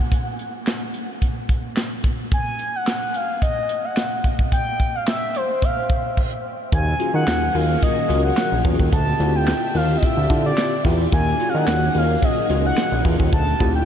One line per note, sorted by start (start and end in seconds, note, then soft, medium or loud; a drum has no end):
0.12 kick loud
0.12 closed hi-hat medium
0.39 closed hi-hat soft
0.66 snare loud
0.66 clap medium
0.66 closed hi-hat medium
0.94 closed hi-hat medium
1.22 kick medium
1.22 closed hi-hat medium
1.49 kick medium
1.49 closed hi-hat medium
1.76 snare loud
1.76 clap medium
1.76 closed hi-hat medium
2.04 kick medium
2.04 closed hi-hat medium
2.32 2.77 G#5 loud
2.32 kick loud
2.32 closed hi-hat medium
2.59 closed hi-hat soft
2.75 3.17 F#5 medium
2.87 snare loud
2.87 clap medium
2.87 closed hi-hat loud
3.14 3.42 F5 medium
3.14 closed hi-hat medium
3.42 3.86 D#5 medium
3.42 kick medium
3.42 closed hi-hat medium
3.69 closed hi-hat medium
3.85 4.25 F#5 medium
3.97 snare loud
3.97 clap medium
3.97 closed hi-hat medium
4.24 kick medium
4.24 closed hi-hat medium
4.39 kick medium
4.52 4.97 G5 loud
4.52 kick medium
4.52 closed hi-hat medium
4.80 kick medium
4.80 closed hi-hat medium
4.95 5.08 F5 medium
5.07 5.38 E5 medium
5.07 snare loud
5.07 clap medium
5.07 closed hi-hat medium
5.35 5.65 C5 medium
5.35 closed hi-hat medium
5.62 6.18 F5 medium
5.62 kick medium
5.62 closed hi-hat medium
5.89 kick medium
5.89 closed hi-hat medium
6.17 kick medium
6.17 crash medium
6.72 6.94 D#2 loud
6.72 8.90 D#3 medium
6.72 8.90 F#3 medium
6.72 8.90 A#3 medium
6.72 8.91 C#4 medium
6.72 8.91 G#4 medium
6.72 7.13 G#5 loud
6.72 kick loud
6.72 closed hi-hat loud
6.99 7.42 C#4 medium
6.99 7.42 F4 medium
6.99 7.42 F#4 medium
6.99 7.43 G#4 medium
6.99 closed hi-hat medium
7.14 7.25 D#3 loud
7.14 7.57 F#5 loud
7.27 7.49 D#2 medium
7.27 snare loud
7.27 clap loud
7.27 closed hi-hat loud
7.55 7.77 D#2 medium
7.55 7.97 C#4 medium
7.55 7.97 F4 medium
7.55 7.98 F#4 medium
7.55 7.98 A#4 medium
7.55 7.82 F5 loud
7.55 open hi-hat medium
7.83 8.22 D#5 loud
7.83 kick loud
7.83 closed hi-hat loud
8.09 8.32 C#2 medium
8.09 8.52 C#4 medium
8.09 8.52 F4 medium
8.09 8.52 F#4 medium
8.09 8.52 A#4 loud
8.09 closed hi-hat medium
8.25 8.62 F#5 loud
8.37 snare loud
8.37 clap medium
8.37 closed hi-hat medium
8.52 8.62 A#1 medium
8.65 8.76 E2 loud
8.65 8.92 C#4 medium
8.65 8.92 F4 medium
8.65 8.93 F#4 medium
8.65 8.93 G#4 medium
8.65 kick loud
8.65 open hi-hat medium
8.80 8.90 D#2 medium
8.80 kick medium
8.92 9.14 D2 loud
8.92 11.10 D3 medium
8.92 11.10 C4 medium
8.92 11.10 G4 medium
8.92 11.10 E5 medium
8.92 9.37 A5 loud
8.92 kick loud
8.92 closed hi-hat loud
9.20 9.53 D2 loud
9.20 9.62 C4 medium
9.20 9.62 E4 medium
9.20 9.63 F4 medium
9.20 9.63 G4 medium
9.20 closed hi-hat medium
9.35 9.78 G5 loud
9.47 snare loud
9.47 clap medium
9.47 closed hi-hat loud
9.74 9.97 D#2 medium
9.74 10.17 C4 medium
9.74 10.17 E4 medium
9.74 10.18 F4 medium
9.74 10.18 G4 medium
9.74 9.99 F5 loud
9.74 open hi-hat medium
9.97 10.05 D#5 medium
10.03 10.45 E5 loud
10.03 kick loud
10.03 closed hi-hat loud
10.17 10.27 D2 loud
10.30 10.52 D3 loud
10.30 10.72 C4 medium
10.30 10.73 E4 medium
10.30 10.73 F4 medium
10.30 10.73 G4 medium
10.30 kick loud
10.30 closed hi-hat medium
10.46 10.83 D5 medium
10.57 snare loud
10.57 clap medium
10.57 closed hi-hat medium
10.85 11.07 E2 loud
10.85 11.13 C4 medium
10.85 11.13 E4 medium
10.85 11.13 F4 medium
10.85 11.13 G4 loud
10.85 kick medium
10.85 open hi-hat medium
11.12 11.35 D#2 loud
11.12 13.30 D#3 medium
11.12 13.30 F#3 medium
11.12 13.30 A#3 medium
11.12 13.30 C#4 medium
11.12 13.30 G#4 medium
11.12 11.50 G#5 loud
11.12 kick loud
11.12 closed hi-hat loud
11.40 11.82 C#4 medium
11.40 11.83 F4 medium
11.40 11.83 F#4 medium
11.40 11.83 G#4 medium
11.40 closed hi-hat soft
11.49 11.57 F5 medium
11.55 11.65 D#3 loud
11.55 11.99 F#5 loud
11.67 11.89 D#2 medium
11.67 snare loud
11.67 clap medium
11.67 closed hi-hat loud
11.95 12.17 D#2 medium
11.95 12.38 C#4 medium
11.95 12.38 F4 medium
11.95 12.38 F#4 medium
11.95 12.38 A#4 medium
11.95 12.26 F5 loud
11.95 open hi-hat medium
12.22 12.66 D#5 medium
12.22 kick loud
12.22 closed hi-hat medium
12.50 12.72 C#2 medium
12.50 12.93 C#4 medium
12.50 12.93 F4 medium
12.50 12.93 F#4 medium
12.50 12.93 G#4 loud
12.50 closed hi-hat medium
12.66 13.03 F#5 loud
12.77 snare loud
12.77 clap medium
12.77 closed hi-hat medium
12.92 13.03 A#1 medium
13.05 13.17 E2 loud
13.05 13.33 C#4 medium
13.05 13.33 F4 medium
13.05 13.33 F#4 medium
13.05 13.33 G#4 medium
13.05 kick medium
13.05 open hi-hat medium
13.20 13.30 D#2 loud
13.20 kick medium
13.33 13.55 D2 loud
13.33 13.85 D3 medium
13.33 13.85 C4 medium
13.33 13.85 G4 medium
13.33 13.85 E5 medium
13.33 13.72 A5 loud
13.33 kick loud
13.33 closed hi-hat loud
13.60 13.85 D2 loud
13.60 13.85 C4 medium
13.60 13.85 E4 medium
13.60 13.85 F4 medium
13.60 13.85 G4 medium
13.60 kick loud
13.60 closed hi-hat soft
13.76 13.85 G5 loud